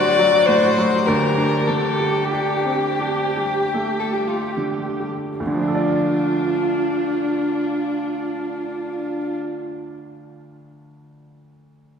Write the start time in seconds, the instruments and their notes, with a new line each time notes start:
Already playing: grand piano D2 A2 F#3 G3 C4 D4, viola F#4, violin D5
0.19 grand piano F#3
0.46 grand piano A2, violin C5
0.78 grand piano F#3
1.06 grand piano D2, viola G4, violin A#4
1.38 grand piano D4
1.67 grand piano D3, violin A4
2.00 grand piano G3
2.31 grand piano D4, violin G4
2.65 grand piano C4
3.01 grand piano D4
3.37 grand piano G3
3.74 grand piano A3
3.99 violin A4
4.13 grand piano G3, violin G4
4.27 violin F4
4.41 violin G4
4.57 grand piano D3
5.00 grand piano G3
5.39 grand piano D2, violin D4, viola F4
5.47 grand piano D3
5.54 grand piano F3
5.61 grand piano D4
5.68 grand piano A4
5.75 grand piano D5